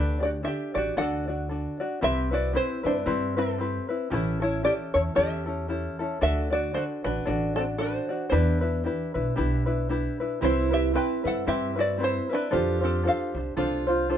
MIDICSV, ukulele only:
0, 0, Header, 1, 2, 480
1, 0, Start_track
1, 0, Tempo, 524934
1, 1846, Time_signature, 4, 2, 24, 8
1, 12963, End_track
2, 0, Start_track
2, 0, Title_t, "Ukulele"
2, 0, Program_c, 0, 24
2, 0, Note_on_c, 0, 62, 71
2, 0, Note_on_c, 0, 67, 82
2, 0, Note_on_c, 0, 69, 75
2, 0, Note_on_c, 0, 74, 73
2, 174, Note_off_c, 0, 74, 0
2, 176, Note_off_c, 0, 67, 0
2, 183, Note_off_c, 0, 69, 0
2, 185, Note_on_c, 0, 74, 49
2, 186, Note_off_c, 0, 62, 0
2, 187, Note_on_c, 0, 67, 44
2, 197, Note_on_c, 0, 62, 37
2, 387, Note_off_c, 0, 62, 0
2, 389, Note_off_c, 0, 67, 0
2, 392, Note_on_c, 0, 69, 53
2, 397, Note_off_c, 0, 74, 0
2, 397, Note_on_c, 0, 62, 58
2, 405, Note_on_c, 0, 67, 64
2, 410, Note_on_c, 0, 74, 60
2, 668, Note_off_c, 0, 74, 0
2, 676, Note_off_c, 0, 67, 0
2, 676, Note_off_c, 0, 69, 0
2, 678, Note_off_c, 0, 62, 0
2, 679, Note_on_c, 0, 74, 51
2, 687, Note_on_c, 0, 67, 47
2, 696, Note_on_c, 0, 62, 45
2, 877, Note_off_c, 0, 62, 0
2, 884, Note_off_c, 0, 74, 0
2, 885, Note_on_c, 0, 69, 67
2, 888, Note_off_c, 0, 67, 0
2, 888, Note_on_c, 0, 62, 70
2, 894, Note_on_c, 0, 66, 73
2, 899, Note_on_c, 0, 74, 73
2, 1157, Note_off_c, 0, 74, 0
2, 1162, Note_off_c, 0, 69, 0
2, 1164, Note_off_c, 0, 62, 0
2, 1167, Note_off_c, 0, 66, 0
2, 1168, Note_on_c, 0, 74, 51
2, 1179, Note_on_c, 0, 66, 46
2, 1184, Note_on_c, 0, 62, 39
2, 1365, Note_on_c, 0, 69, 60
2, 1367, Note_off_c, 0, 62, 0
2, 1369, Note_off_c, 0, 66, 0
2, 1369, Note_off_c, 0, 74, 0
2, 1378, Note_on_c, 0, 62, 57
2, 1380, Note_on_c, 0, 66, 57
2, 1388, Note_on_c, 0, 74, 62
2, 1635, Note_off_c, 0, 74, 0
2, 1640, Note_off_c, 0, 66, 0
2, 1642, Note_off_c, 0, 69, 0
2, 1646, Note_on_c, 0, 74, 52
2, 1649, Note_off_c, 0, 62, 0
2, 1651, Note_on_c, 0, 66, 49
2, 1664, Note_on_c, 0, 62, 39
2, 1840, Note_on_c, 0, 67, 75
2, 1842, Note_off_c, 0, 62, 0
2, 1846, Note_on_c, 0, 60, 76
2, 1847, Note_off_c, 0, 74, 0
2, 1848, Note_off_c, 0, 66, 0
2, 1851, Note_on_c, 0, 64, 67
2, 1851, Note_on_c, 0, 71, 82
2, 2101, Note_off_c, 0, 71, 0
2, 2108, Note_off_c, 0, 64, 0
2, 2112, Note_on_c, 0, 71, 45
2, 2118, Note_off_c, 0, 60, 0
2, 2119, Note_on_c, 0, 64, 40
2, 2120, Note_off_c, 0, 67, 0
2, 2129, Note_on_c, 0, 60, 36
2, 2311, Note_off_c, 0, 60, 0
2, 2315, Note_off_c, 0, 64, 0
2, 2316, Note_on_c, 0, 67, 60
2, 2321, Note_off_c, 0, 71, 0
2, 2321, Note_on_c, 0, 60, 55
2, 2326, Note_on_c, 0, 64, 57
2, 2331, Note_on_c, 0, 71, 61
2, 2581, Note_off_c, 0, 71, 0
2, 2586, Note_off_c, 0, 64, 0
2, 2592, Note_on_c, 0, 71, 54
2, 2595, Note_off_c, 0, 60, 0
2, 2597, Note_on_c, 0, 64, 43
2, 2598, Note_off_c, 0, 67, 0
2, 2606, Note_on_c, 0, 60, 42
2, 2785, Note_off_c, 0, 60, 0
2, 2791, Note_off_c, 0, 64, 0
2, 2793, Note_off_c, 0, 71, 0
2, 2796, Note_on_c, 0, 60, 75
2, 2797, Note_on_c, 0, 67, 66
2, 2802, Note_on_c, 0, 64, 77
2, 2804, Note_on_c, 0, 71, 80
2, 3067, Note_off_c, 0, 71, 0
2, 3072, Note_off_c, 0, 64, 0
2, 3078, Note_off_c, 0, 60, 0
2, 3078, Note_on_c, 0, 71, 52
2, 3079, Note_off_c, 0, 67, 0
2, 3083, Note_on_c, 0, 64, 48
2, 3096, Note_on_c, 0, 60, 43
2, 3274, Note_off_c, 0, 60, 0
2, 3276, Note_on_c, 0, 67, 61
2, 3280, Note_off_c, 0, 64, 0
2, 3284, Note_off_c, 0, 71, 0
2, 3285, Note_on_c, 0, 60, 56
2, 3291, Note_on_c, 0, 64, 55
2, 3299, Note_on_c, 0, 71, 66
2, 3543, Note_off_c, 0, 71, 0
2, 3554, Note_on_c, 0, 71, 48
2, 3555, Note_off_c, 0, 64, 0
2, 3558, Note_off_c, 0, 60, 0
2, 3558, Note_off_c, 0, 67, 0
2, 3566, Note_on_c, 0, 64, 44
2, 3569, Note_on_c, 0, 60, 40
2, 3752, Note_on_c, 0, 67, 66
2, 3753, Note_off_c, 0, 64, 0
2, 3754, Note_off_c, 0, 60, 0
2, 3758, Note_on_c, 0, 61, 73
2, 3761, Note_off_c, 0, 71, 0
2, 3763, Note_on_c, 0, 64, 72
2, 3765, Note_on_c, 0, 69, 76
2, 4012, Note_off_c, 0, 69, 0
2, 4023, Note_on_c, 0, 69, 49
2, 4027, Note_off_c, 0, 64, 0
2, 4031, Note_off_c, 0, 61, 0
2, 4037, Note_off_c, 0, 67, 0
2, 4038, Note_on_c, 0, 64, 46
2, 4042, Note_on_c, 0, 61, 39
2, 4231, Note_off_c, 0, 61, 0
2, 4234, Note_off_c, 0, 64, 0
2, 4234, Note_on_c, 0, 67, 52
2, 4237, Note_off_c, 0, 69, 0
2, 4242, Note_on_c, 0, 61, 57
2, 4245, Note_on_c, 0, 64, 59
2, 4253, Note_on_c, 0, 69, 58
2, 4506, Note_off_c, 0, 69, 0
2, 4517, Note_on_c, 0, 69, 52
2, 4518, Note_off_c, 0, 64, 0
2, 4518, Note_off_c, 0, 67, 0
2, 4522, Note_off_c, 0, 61, 0
2, 4529, Note_on_c, 0, 64, 47
2, 4531, Note_on_c, 0, 61, 42
2, 4699, Note_off_c, 0, 61, 0
2, 4707, Note_off_c, 0, 64, 0
2, 4708, Note_off_c, 0, 69, 0
2, 4710, Note_on_c, 0, 61, 74
2, 4711, Note_on_c, 0, 67, 68
2, 4718, Note_on_c, 0, 64, 77
2, 4719, Note_on_c, 0, 69, 86
2, 4981, Note_off_c, 0, 69, 0
2, 4986, Note_off_c, 0, 64, 0
2, 4992, Note_on_c, 0, 69, 52
2, 4993, Note_off_c, 0, 61, 0
2, 4997, Note_off_c, 0, 67, 0
2, 4997, Note_on_c, 0, 64, 44
2, 5004, Note_on_c, 0, 61, 43
2, 5189, Note_off_c, 0, 61, 0
2, 5196, Note_off_c, 0, 64, 0
2, 5196, Note_on_c, 0, 67, 54
2, 5200, Note_on_c, 0, 61, 61
2, 5202, Note_off_c, 0, 69, 0
2, 5207, Note_on_c, 0, 64, 62
2, 5212, Note_on_c, 0, 69, 67
2, 5468, Note_off_c, 0, 69, 0
2, 5475, Note_off_c, 0, 64, 0
2, 5479, Note_off_c, 0, 67, 0
2, 5479, Note_on_c, 0, 69, 55
2, 5482, Note_off_c, 0, 61, 0
2, 5486, Note_on_c, 0, 64, 47
2, 5499, Note_on_c, 0, 61, 46
2, 5668, Note_off_c, 0, 69, 0
2, 5677, Note_off_c, 0, 61, 0
2, 5679, Note_on_c, 0, 69, 74
2, 5681, Note_on_c, 0, 62, 76
2, 5682, Note_off_c, 0, 64, 0
2, 5684, Note_on_c, 0, 74, 77
2, 5686, Note_on_c, 0, 66, 78
2, 5937, Note_off_c, 0, 74, 0
2, 5946, Note_off_c, 0, 66, 0
2, 5948, Note_on_c, 0, 74, 51
2, 5950, Note_off_c, 0, 62, 0
2, 5957, Note_on_c, 0, 66, 44
2, 5961, Note_off_c, 0, 69, 0
2, 5961, Note_on_c, 0, 62, 39
2, 6154, Note_off_c, 0, 62, 0
2, 6158, Note_off_c, 0, 66, 0
2, 6160, Note_off_c, 0, 74, 0
2, 6160, Note_on_c, 0, 69, 51
2, 6165, Note_on_c, 0, 62, 60
2, 6169, Note_on_c, 0, 66, 63
2, 6170, Note_on_c, 0, 74, 66
2, 6434, Note_off_c, 0, 74, 0
2, 6439, Note_off_c, 0, 66, 0
2, 6442, Note_off_c, 0, 69, 0
2, 6444, Note_off_c, 0, 62, 0
2, 6445, Note_on_c, 0, 74, 54
2, 6450, Note_on_c, 0, 66, 46
2, 6461, Note_on_c, 0, 62, 39
2, 6633, Note_off_c, 0, 62, 0
2, 6634, Note_on_c, 0, 69, 77
2, 6636, Note_off_c, 0, 74, 0
2, 6642, Note_off_c, 0, 66, 0
2, 6644, Note_on_c, 0, 62, 71
2, 6647, Note_on_c, 0, 74, 81
2, 6653, Note_on_c, 0, 66, 75
2, 6901, Note_off_c, 0, 74, 0
2, 6910, Note_off_c, 0, 66, 0
2, 6912, Note_on_c, 0, 74, 56
2, 6918, Note_off_c, 0, 62, 0
2, 6919, Note_off_c, 0, 69, 0
2, 6921, Note_on_c, 0, 66, 46
2, 6929, Note_on_c, 0, 62, 44
2, 7117, Note_off_c, 0, 62, 0
2, 7117, Note_on_c, 0, 69, 57
2, 7122, Note_off_c, 0, 66, 0
2, 7123, Note_off_c, 0, 74, 0
2, 7128, Note_on_c, 0, 62, 59
2, 7133, Note_on_c, 0, 66, 56
2, 7136, Note_on_c, 0, 74, 68
2, 7386, Note_off_c, 0, 74, 0
2, 7397, Note_on_c, 0, 74, 49
2, 7398, Note_off_c, 0, 66, 0
2, 7401, Note_off_c, 0, 69, 0
2, 7406, Note_off_c, 0, 62, 0
2, 7409, Note_on_c, 0, 66, 46
2, 7420, Note_on_c, 0, 62, 39
2, 7591, Note_off_c, 0, 62, 0
2, 7598, Note_on_c, 0, 67, 71
2, 7600, Note_off_c, 0, 66, 0
2, 7602, Note_off_c, 0, 74, 0
2, 7602, Note_on_c, 0, 62, 68
2, 7603, Note_on_c, 0, 64, 76
2, 7606, Note_on_c, 0, 71, 83
2, 7862, Note_off_c, 0, 71, 0
2, 7868, Note_off_c, 0, 64, 0
2, 7873, Note_on_c, 0, 71, 49
2, 7879, Note_on_c, 0, 64, 40
2, 7881, Note_off_c, 0, 67, 0
2, 7883, Note_off_c, 0, 62, 0
2, 7894, Note_on_c, 0, 62, 40
2, 8079, Note_off_c, 0, 62, 0
2, 8082, Note_on_c, 0, 67, 54
2, 8083, Note_off_c, 0, 71, 0
2, 8087, Note_off_c, 0, 64, 0
2, 8090, Note_on_c, 0, 62, 54
2, 8097, Note_on_c, 0, 64, 55
2, 8105, Note_on_c, 0, 71, 56
2, 8348, Note_off_c, 0, 71, 0
2, 8354, Note_off_c, 0, 64, 0
2, 8359, Note_on_c, 0, 71, 59
2, 8363, Note_off_c, 0, 67, 0
2, 8365, Note_on_c, 0, 64, 54
2, 8367, Note_off_c, 0, 62, 0
2, 8377, Note_on_c, 0, 62, 44
2, 8551, Note_off_c, 0, 62, 0
2, 8556, Note_on_c, 0, 67, 78
2, 8559, Note_off_c, 0, 64, 0
2, 8559, Note_off_c, 0, 71, 0
2, 8562, Note_on_c, 0, 62, 84
2, 8570, Note_on_c, 0, 64, 86
2, 8570, Note_on_c, 0, 71, 96
2, 8822, Note_off_c, 0, 71, 0
2, 8829, Note_off_c, 0, 64, 0
2, 8833, Note_on_c, 0, 71, 57
2, 8837, Note_off_c, 0, 62, 0
2, 8840, Note_off_c, 0, 67, 0
2, 8840, Note_on_c, 0, 64, 51
2, 8848, Note_on_c, 0, 62, 47
2, 9043, Note_off_c, 0, 62, 0
2, 9043, Note_off_c, 0, 64, 0
2, 9043, Note_off_c, 0, 71, 0
2, 9045, Note_on_c, 0, 67, 62
2, 9054, Note_on_c, 0, 62, 65
2, 9054, Note_on_c, 0, 64, 68
2, 9064, Note_on_c, 0, 71, 65
2, 9316, Note_off_c, 0, 71, 0
2, 9324, Note_off_c, 0, 64, 0
2, 9325, Note_off_c, 0, 67, 0
2, 9327, Note_on_c, 0, 71, 48
2, 9329, Note_off_c, 0, 62, 0
2, 9335, Note_on_c, 0, 64, 45
2, 9345, Note_on_c, 0, 62, 40
2, 9515, Note_off_c, 0, 64, 0
2, 9518, Note_on_c, 0, 67, 65
2, 9523, Note_off_c, 0, 71, 0
2, 9524, Note_off_c, 0, 62, 0
2, 9526, Note_on_c, 0, 64, 76
2, 9527, Note_on_c, 0, 60, 67
2, 9534, Note_on_c, 0, 71, 76
2, 9781, Note_off_c, 0, 71, 0
2, 9792, Note_off_c, 0, 64, 0
2, 9792, Note_on_c, 0, 71, 48
2, 9801, Note_off_c, 0, 67, 0
2, 9803, Note_on_c, 0, 64, 43
2, 9806, Note_off_c, 0, 60, 0
2, 9815, Note_on_c, 0, 60, 37
2, 9991, Note_off_c, 0, 60, 0
2, 9996, Note_on_c, 0, 67, 51
2, 9997, Note_off_c, 0, 64, 0
2, 10002, Note_on_c, 0, 60, 53
2, 10003, Note_off_c, 0, 71, 0
2, 10008, Note_on_c, 0, 64, 55
2, 10016, Note_on_c, 0, 71, 58
2, 10265, Note_off_c, 0, 71, 0
2, 10276, Note_on_c, 0, 71, 45
2, 10278, Note_off_c, 0, 64, 0
2, 10280, Note_off_c, 0, 67, 0
2, 10283, Note_off_c, 0, 60, 0
2, 10289, Note_on_c, 0, 64, 44
2, 10295, Note_on_c, 0, 60, 40
2, 10478, Note_off_c, 0, 60, 0
2, 10478, Note_off_c, 0, 64, 0
2, 10484, Note_on_c, 0, 67, 67
2, 10485, Note_off_c, 0, 71, 0
2, 10489, Note_on_c, 0, 60, 69
2, 10489, Note_on_c, 0, 64, 75
2, 10494, Note_on_c, 0, 71, 77
2, 10740, Note_off_c, 0, 71, 0
2, 10751, Note_on_c, 0, 71, 51
2, 10754, Note_off_c, 0, 64, 0
2, 10757, Note_off_c, 0, 60, 0
2, 10764, Note_off_c, 0, 67, 0
2, 10765, Note_on_c, 0, 64, 49
2, 10768, Note_on_c, 0, 60, 44
2, 10947, Note_off_c, 0, 60, 0
2, 10950, Note_on_c, 0, 67, 50
2, 10958, Note_on_c, 0, 60, 60
2, 10960, Note_off_c, 0, 64, 0
2, 10962, Note_off_c, 0, 71, 0
2, 10971, Note_on_c, 0, 64, 55
2, 10975, Note_on_c, 0, 71, 64
2, 11231, Note_off_c, 0, 71, 0
2, 11237, Note_off_c, 0, 67, 0
2, 11240, Note_off_c, 0, 60, 0
2, 11240, Note_off_c, 0, 64, 0
2, 11242, Note_on_c, 0, 71, 47
2, 11251, Note_on_c, 0, 64, 39
2, 11256, Note_on_c, 0, 60, 39
2, 11437, Note_off_c, 0, 60, 0
2, 11437, Note_on_c, 0, 69, 78
2, 11441, Note_on_c, 0, 62, 74
2, 11442, Note_off_c, 0, 64, 0
2, 11444, Note_off_c, 0, 71, 0
2, 11446, Note_on_c, 0, 65, 84
2, 11448, Note_on_c, 0, 72, 76
2, 11702, Note_off_c, 0, 72, 0
2, 11707, Note_off_c, 0, 65, 0
2, 11713, Note_on_c, 0, 72, 46
2, 11718, Note_on_c, 0, 65, 44
2, 11720, Note_off_c, 0, 69, 0
2, 11722, Note_off_c, 0, 62, 0
2, 11732, Note_on_c, 0, 62, 39
2, 11917, Note_off_c, 0, 62, 0
2, 11917, Note_on_c, 0, 69, 58
2, 11919, Note_off_c, 0, 65, 0
2, 11922, Note_off_c, 0, 72, 0
2, 11928, Note_on_c, 0, 62, 51
2, 11930, Note_on_c, 0, 65, 58
2, 11939, Note_on_c, 0, 72, 63
2, 12190, Note_off_c, 0, 72, 0
2, 12197, Note_off_c, 0, 69, 0
2, 12201, Note_on_c, 0, 72, 51
2, 12205, Note_off_c, 0, 62, 0
2, 12206, Note_off_c, 0, 65, 0
2, 12217, Note_on_c, 0, 65, 47
2, 12225, Note_off_c, 0, 65, 0
2, 12229, Note_on_c, 0, 62, 42
2, 12401, Note_off_c, 0, 62, 0
2, 12401, Note_off_c, 0, 72, 0
2, 12405, Note_on_c, 0, 69, 74
2, 12412, Note_on_c, 0, 62, 73
2, 12417, Note_on_c, 0, 65, 80
2, 12419, Note_on_c, 0, 72, 75
2, 12671, Note_off_c, 0, 72, 0
2, 12682, Note_on_c, 0, 72, 57
2, 12683, Note_off_c, 0, 69, 0
2, 12686, Note_off_c, 0, 62, 0
2, 12686, Note_off_c, 0, 65, 0
2, 12697, Note_on_c, 0, 65, 53
2, 12698, Note_on_c, 0, 62, 46
2, 12882, Note_off_c, 0, 62, 0
2, 12884, Note_off_c, 0, 65, 0
2, 12886, Note_off_c, 0, 72, 0
2, 12888, Note_on_c, 0, 69, 66
2, 12893, Note_on_c, 0, 62, 72
2, 12895, Note_on_c, 0, 65, 66
2, 12906, Note_on_c, 0, 72, 67
2, 12963, Note_off_c, 0, 62, 0
2, 12963, Note_off_c, 0, 65, 0
2, 12963, Note_off_c, 0, 69, 0
2, 12963, Note_off_c, 0, 72, 0
2, 12963, End_track
0, 0, End_of_file